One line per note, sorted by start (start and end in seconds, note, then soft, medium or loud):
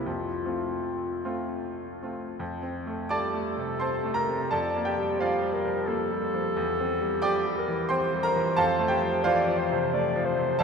0.00 0.11 C2 soft
0.00 0.11 A#3 soft
0.00 0.11 C4 soft
0.00 0.10 G4 soft
0.06 0.46 F2 soft
0.06 1.65 F4 medium
0.45 1.22 A3 soft
0.45 1.22 C4 soft
0.45 1.22 F4 soft
1.25 1.98 A3 soft
1.25 1.99 C4 soft
1.25 1.98 F4 soft
2.02 2.36 A3 soft
2.02 2.37 C4 soft
2.02 2.37 F4 soft
2.40 4.47 F2 soft
2.62 3.01 C4 soft
2.87 3.25 A3 soft
3.09 3.34 G3 soft
3.09 4.47 A4 medium
3.09 3.76 D5 medium
3.09 3.76 A5 medium
3.09 3.80 D6 medium
3.34 3.71 A3 soft
3.57 3.95 C3 soft
3.80 4.18 C4 soft
3.80 4.14 C5 soft
3.80 4.14 A5 soft
3.80 4.15 C6 medium
4.05 4.42 A3 soft
4.14 4.49 A#4 medium
4.14 4.51 A#5 medium
4.28 4.52 C3 soft
4.51 6.52 F2 medium
4.51 4.84 A4 medium
4.51 5.21 D5 medium
4.51 4.86 A5 medium
4.76 5.12 A#3 soft
4.85 5.18 G4 medium
4.85 5.20 G5 medium
4.99 5.35 G3 soft
5.19 5.44 F3 soft
5.19 6.52 F4 soft
5.19 5.55 C5 medium
5.19 6.52 D5 medium
5.19 6.56 F5 medium
5.43 5.79 G3 soft
5.53 5.89 A#4 medium
5.65 6.02 F3 soft
5.88 6.24 A#3 soft
5.88 7.26 A4 medium
6.11 6.47 G3 soft
6.34 6.56 F3 soft
6.56 8.55 E2 medium
6.80 7.15 C4 soft
7.01 7.37 G3 soft
7.22 7.45 F3 soft
7.22 7.57 G4 medium
7.22 7.86 D5 medium
7.22 7.87 G5 medium
7.22 7.90 D6 medium
7.46 7.82 G3 soft
7.58 7.91 A#4 medium
7.68 8.05 E3 soft
7.89 8.27 C4 soft
7.89 9.25 C5 medium
7.89 8.22 C5 medium
7.89 8.22 G5 medium
7.89 8.24 C6 medium
8.14 8.50 G3 soft
8.23 8.56 A#4 medium
8.23 8.58 A#5 medium
8.36 8.59 E3 medium
8.57 10.57 F2 medium
8.57 8.90 A4 medium
8.57 8.90 F5 medium
8.57 8.91 A5 medium
8.79 9.16 A3 medium
8.88 9.22 G4 medium
8.88 9.24 G5 medium
9.02 9.39 F3 soft
9.23 9.48 E3 soft
9.23 10.57 F4 medium
9.23 10.57 C5 medium
9.23 9.60 D5 medium
9.23 10.59 F5 medium
9.47 9.84 F3 medium
9.59 9.93 C5 medium
9.71 10.07 C3 medium
9.94 10.30 A3 soft
9.94 10.27 D5 medium
10.16 10.52 F3 medium
10.25 10.59 C5 medium
10.38 10.62 C3 soft
10.59 10.63 F2 medium
10.59 10.63 A4 medium
10.59 10.63 D5 medium
10.59 10.63 F5 medium
10.59 10.63 A5 medium